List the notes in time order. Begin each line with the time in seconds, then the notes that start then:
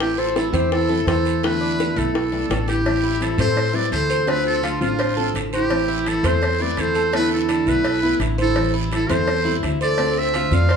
Already playing: A1 A4
0.00 E3 A3 C4 E4 G4, high bongo, long guiro
0.18 C4 F4 A4
0.36 E3 A3 C4 E4 A4, high bongo, short guiro
0.50 E2 C4 E4 F4 A4
0.54 A3 C4 G4, high bongo, short guiro
0.71 E4 A4, muted nylon-string guitar stroke, high bongo, long guiro
0.89 A3 C4 E4 A4, high bongo
1.06 E2 E3 A3 C4 E4 A4 C5, high bongo, low bongo, short guiro
1.25 high bongo, short guiro
1.43 D3 A3 B3 E4 B4, high bongo, long guiro
1.61 D4
1.79 D3 A3 B3 E4, high bongo, short guiro
1.96 B1 A3 B3 E4 A4, high bongo, short guiro
2.15 muted nylon-string guitar stroke, high bongo, long guiro
2.32 A3 B3 D4 E4, high bongo
2.50 A1 D3 A3 B3 E4, high bongo, low bongo, short guiro
2.68 E4 G4, high bongo, short guiro
2.85 E3 G3 C4 E4, cowbell, long guiro
3.03 E4
3.20 E3 G3 C4 E4 A4, cowbell, short guiro
3.38 A2 G3 C4 E4 A4 C5, cowbell, short guiro
3.56 muted nylon-string guitar stroke, cowbell, long guiro
3.73 G3 C4 E4 B4 D5
3.91 D2 E3 G3 C4 E4 A4 C5, cowbell, short guiro
4.10 C5, short guiro
4.26 D3 A3 C4 F4 B4, cowbell, long guiro
4.46 F4 A4
4.63 D3 A3 C4 F4, cowbell, short guiro
4.81 A1 A3 C4 D4 F4, short guiro
4.99 C5, muted nylon-string guitar stroke, cowbell, long guiro
5.17 A3 C4 F4 A4
5.34 A1 D3 A3 C4 F4, cowbell, short guiro
5.53 E4 G4 C5, short guiro
5.70 E3 A3 C4 E4, cowbell, long guiro
5.88 E4
6.06 E3 A3 C4 E4 A4, cowbell, short guiro
6.23 E2 A3 C4 E4 A4 C5, cowbell, short guiro
6.42 muted nylon-string guitar stroke, cowbell, long guiro
6.60 A3 C4 E4 B4 D5
6.77 E2 E3 A3 C4 E4 A4 C5, cowbell, short guiro
6.95 A4, short guiro
7.13 D3 A3 B3 E4 B4, cowbell, long guiro
7.33 E4 A4
7.49 D3 A3 B3 D4 E4, cowbell, short guiro
7.66 B1 A3 B3 E4 B4, short guiro
7.84 A4, muted nylon-string guitar stroke, cowbell, long guiro
8.03 A3 B3 E4
8.19 A1 D3 A3 B3 E4, cowbell, short guiro
8.38 E4 A4 C5, short guiro
8.56 E3 G3 C4 E4, cowbell, long guiro
8.74 E4
8.91 E3 G3 C4 E4 A4, cowbell, short guiro
9.09 E2 G3 C4 E4 A4 C5, cowbell, short guiro
9.27 muted nylon-string guitar stroke, cowbell, long guiro
9.45 G3 C4 E4
9.63 D2 E3 G3 C4 E4, cowbell, short guiro
9.81 A4 C5 D5, short guiro
9.98 D3 A3 C4 F4, cowbell, long guiro
10.18 C5 E5
10.34 D3 A3 C4 F4, cowbell, short guiro
10.51 F2 A3 C4 F4 D5 F5, short guiro
10.69 C5, cowbell, long guiro